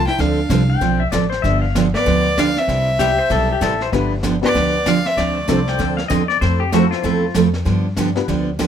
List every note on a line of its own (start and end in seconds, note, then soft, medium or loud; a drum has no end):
0.07 0.19 E4 medium
0.07 0.21 G5 medium
0.07 snare soft
0.18 0.44 D2 medium
0.18 0.39 D3 medium
0.18 0.39 F3 medium
0.18 0.39 C4 medium
0.18 0.81 D4 medium
0.18 0.39 D4 medium
0.18 0.40 A4 medium
0.18 0.82 F5 medium
0.18 brush sweep medium
0.18 kick soft
0.18 snare soft
0.49 0.76 C2 medium
0.49 0.61 D3 medium
0.49 0.61 F3 medium
0.49 0.61 C4 medium
0.49 0.62 D4 medium
0.49 0.62 A4 medium
0.49 kick soft
0.49 snare medium
0.49 hi-hat pedal medium
0.70 1.00 G5 medium
0.81 1.07 B1 medium
0.81 1.01 D3 medium
0.81 1.01 F3 medium
0.81 1.01 C4 medium
0.81 1.02 D4 medium
0.81 1.02 A4 medium
0.81 brush sweep soft
0.81 kick soft
0.81 snare soft
1.00 1.11 E5 medium
1.12 1.39 A1 medium
1.12 1.23 D3 medium
1.12 1.23 F3 medium
1.12 1.24 C4 medium
1.12 1.24 D4 medium
1.12 1.24 A4 medium
1.12 1.29 D5 medium
1.12 kick soft
1.12 snare medium
1.12 hi-hat pedal medium
1.30 1.42 C5 medium
1.30 snare soft
1.42 1.93 G1 medium
1.42 1.64 D3 medium
1.42 1.64 F3 medium
1.42 1.64 B3 medium
1.42 1.65 D4 medium
1.42 1.65 G4 medium
1.42 1.61 E5 medium
1.42 brush sweep soft
1.42 kick soft
1.42 snare soft
1.62 1.83 F5 medium
1.75 1.86 D3 medium
1.75 1.86 F3 medium
1.75 1.86 B3 medium
1.75 1.86 D4 medium
1.75 1.87 G4 medium
1.75 kick soft
1.75 snare medium
1.75 hi-hat pedal medium
1.94 2.34 B3 medium
1.94 2.40 D5 loud
1.94 snare soft
2.06 2.56 D2 medium
2.06 2.26 D3 medium
2.06 2.26 F3 medium
2.06 2.26 B3 medium
2.06 2.26 D4 medium
2.06 2.27 G4 medium
2.06 brush sweep soft
2.06 kick soft
2.06 snare soft
2.37 2.49 D3 medium
2.37 2.49 F3 medium
2.37 2.49 B3 medium
2.37 2.59 D4 medium
2.37 2.49 D4 medium
2.37 2.49 G4 medium
2.37 2.60 F5 loud
2.37 kick soft
2.37 snare medium
2.37 hi-hat pedal medium
2.56 3.82 C4 medium
2.56 3.82 E5 medium
2.56 snare soft
2.68 3.18 C2 medium
2.68 2.89 C3 soft
2.68 2.89 G3 soft
2.68 2.89 B3 medium
2.68 2.89 E4 medium
2.68 2.89 G4 medium
2.68 brush sweep medium
2.68 kick soft
2.68 snare soft
2.99 3.10 C3 medium
2.99 3.11 G3 medium
2.99 3.11 B3 medium
2.99 3.11 E4 medium
2.99 3.18 G4 medium
2.99 3.11 G4 medium
2.99 kick soft
2.99 snare medium
2.99 hi-hat pedal medium
3.19 3.30 C5 medium
3.30 3.57 B1 medium
3.30 3.50 C3 medium
3.30 3.50 G3 medium
3.30 3.51 B3 medium
3.30 3.51 E4 medium
3.30 3.51 G4 medium
3.30 3.49 A4 medium
3.30 brush sweep soft
3.30 kick soft
3.30 snare soft
3.52 3.63 G4 medium
3.61 3.88 A1 medium
3.61 3.72 C3 medium
3.61 3.73 G3 medium
3.61 3.73 B3 medium
3.61 3.73 E4 medium
3.61 3.73 G4 medium
3.61 3.80 A4 medium
3.61 kick soft
3.61 snare medium
3.61 hi-hat pedal medium
3.81 3.93 C5 medium
3.81 snare soft
3.92 4.42 G1 medium
3.92 4.13 D3 medium
3.92 4.13 F3 soft
3.92 4.10 B3 medium
3.92 4.14 B3 medium
3.92 4.10 D4 medium
3.92 4.14 D4 medium
3.92 4.10 F4 medium
3.92 4.10 G4 medium
3.92 4.14 G4 medium
3.92 4.11 B4 medium
3.92 4.10 B4 medium
3.92 brush sweep soft
3.92 kick soft
3.92 snare soft
4.23 4.35 D3 medium
4.23 4.35 F3 medium
4.23 4.35 B3 medium
4.23 4.35 D4 medium
4.23 4.35 G4 medium
4.23 kick soft
4.23 snare medium
4.23 hi-hat pedal medium
4.42 4.53 B3 medium
4.42 4.86 B3 medium
4.42 4.53 D4 medium
4.42 4.54 F4 medium
4.42 4.54 G4 medium
4.42 4.54 D5 medium
4.42 4.89 D5 medium
4.42 snare soft
4.55 5.05 D2 medium
4.55 4.75 D3 medium
4.55 4.75 F3 medium
4.55 4.75 B3 medium
4.55 4.75 D4 medium
4.55 4.76 G4 medium
4.55 brush sweep soft
4.55 kick soft
4.55 snare soft
4.86 4.97 D3 medium
4.86 4.97 F3 medium
4.86 4.97 B3 medium
4.86 5.05 D4 medium
4.86 4.97 D4 medium
4.86 4.98 G4 medium
4.86 5.08 F5 medium
4.86 kick soft
4.86 snare medium
4.86 hi-hat pedal medium
5.05 5.18 C4 medium
5.05 5.19 E5 loud
5.05 snare soft
5.17 5.42 D2 medium
5.17 5.38 D3 medium
5.17 5.38 F3 medium
5.17 5.80 A3 medium
5.17 5.38 C4 medium
5.17 5.38 D4 medium
5.17 5.38 A4 medium
5.17 5.79 D5 medium
5.17 brush sweep medium
5.17 kick soft
5.17 snare soft
5.47 5.75 C2 medium
5.47 5.59 D3 medium
5.47 5.59 F3 medium
5.47 5.94 C4 medium
5.47 5.59 C4 medium
5.47 5.94 D4 soft
5.47 5.60 D4 medium
5.47 5.95 F4 medium
5.47 5.95 A4 medium
5.47 5.60 A4 medium
5.47 5.95 C5 medium
5.47 kick soft
5.47 snare medium
5.47 hi-hat pedal medium
5.68 5.97 G5 medium
5.68 snare soft
5.79 6.06 D2 medium
5.79 5.99 D3 medium
5.79 5.99 F3 medium
5.79 6.00 C4 medium
5.79 6.00 D4 medium
5.79 6.00 A4 medium
5.79 brush sweep soft
5.79 kick soft
5.79 snare soft
5.97 6.08 F5 medium
5.97 snare medium
6.08 6.37 E2 medium
6.08 6.21 D3 medium
6.08 6.21 F3 medium
6.08 6.21 C4 medium
6.08 6.22 D4 medium
6.08 6.21 A4 medium
6.08 6.28 D#5 medium
6.08 kick soft
6.08 snare medium
6.08 hi-hat pedal medium
6.28 6.41 D5 medium
6.28 snare soft
6.41 6.91 F2 medium
6.41 6.62 F3 soft
6.41 6.62 A3 medium
6.41 6.62 C4 soft
6.41 6.62 E4 medium
6.41 6.62 A4 medium
6.41 6.60 C5 medium
6.41 brush sweep medium
6.41 kick soft
6.41 snare soft
6.60 6.72 G4 medium
6.72 6.84 F3 medium
6.72 6.84 A3 medium
6.72 7.19 C4 medium
6.72 6.84 C4 medium
6.72 6.84 E4 medium
6.72 7.20 E4 medium
6.72 7.20 F4 medium
6.72 6.90 F#4 medium
6.72 6.84 A4 medium
6.72 7.20 A4 medium
6.72 7.20 C5 medium
6.72 kick soft
6.72 snare medium
6.72 hi-hat pedal medium
6.91 7.01 F4 medium
6.91 snare soft
7.03 7.30 E2 medium
7.03 7.24 F3 medium
7.03 7.24 A3 medium
7.03 7.24 C4 medium
7.03 7.25 E4 medium
7.03 7.33 F4 medium
7.03 7.24 A4 medium
7.03 brush sweep soft
7.03 kick soft
7.03 snare soft
7.34 7.61 F2 medium
7.34 7.46 F3 medium
7.34 7.46 A3 medium
7.34 7.47 C4 medium
7.34 7.47 E4 medium
7.34 7.47 A4 medium
7.34 kick soft
7.34 snare medium
7.34 hi-hat pedal medium
7.54 snare soft
7.65 8.16 G2 medium
7.65 7.86 D3 medium
7.65 7.86 F3 medium
7.65 7.86 B3 medium
7.65 7.86 D4 medium
7.65 7.87 G4 medium
7.65 brush sweep soft
7.65 kick soft
7.65 snare soft
7.97 8.08 D3 medium
7.97 8.09 F3 medium
7.97 8.09 B3 medium
7.97 8.09 D4 medium
7.97 8.09 G4 medium
7.97 kick soft
7.97 snare medium
7.97 hi-hat pedal medium
8.15 8.27 B3 medium
8.15 8.27 D4 medium
8.15 8.27 F4 medium
8.15 8.27 G4 medium
8.15 8.27 B4 medium
8.15 snare soft
8.28 8.67 D2 medium
8.28 8.49 D3 medium
8.28 8.49 F3 medium
8.28 8.49 B3 medium
8.28 8.49 D4 medium
8.28 8.49 G4 medium
8.28 brush sweep soft
8.28 kick soft
8.28 snare soft
8.59 8.67 D3 medium
8.59 8.67 F3 medium
8.59 8.67 B3 medium
8.59 8.67 D4 medium
8.59 8.67 G4 medium
8.59 kick soft
8.59 snare medium
8.59 hi-hat pedal medium